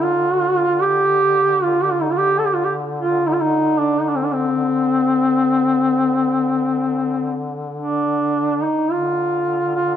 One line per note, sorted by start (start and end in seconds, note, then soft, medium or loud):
0.00 8.74 D3 soft
0.00 0.84 F4 medium
0.82 1.65 G4 loud
1.63 1.85 F4 medium
1.83 1.93 G4 medium
1.91 2.03 F4 medium
2.02 2.12 D#4 medium
2.11 2.19 F4 medium
2.18 2.40 G4 medium
2.39 2.47 A4 medium
2.46 2.56 G4 medium
2.54 2.66 F4 medium
2.65 2.73 G4 medium
3.01 3.28 F4 medium
3.27 3.34 D#4 medium
3.33 3.42 F4 medium
3.40 3.81 D#4 medium
3.80 4.03 D4 medium
4.01 4.10 D#4 medium
4.09 4.17 D4 medium
4.16 4.27 C4 medium
4.25 4.35 D4 medium
4.33 7.48 C4 medium
7.78 8.65 D4 medium
8.64 8.93 D#4 medium
8.91 9.97 D3 soft
8.91 9.74 F4 medium
9.75 9.96 F4 medium